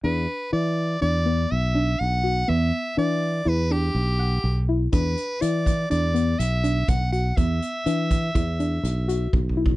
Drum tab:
HH |------------------------------|------------------------------|x--x--x--x--x--x--x--x--x--x--|x--x--x--x--x--x--x--x--------|
BD |------------------------------|------------------------------|o--------o--------------o-----|o--------o--o-----------o-o-o-|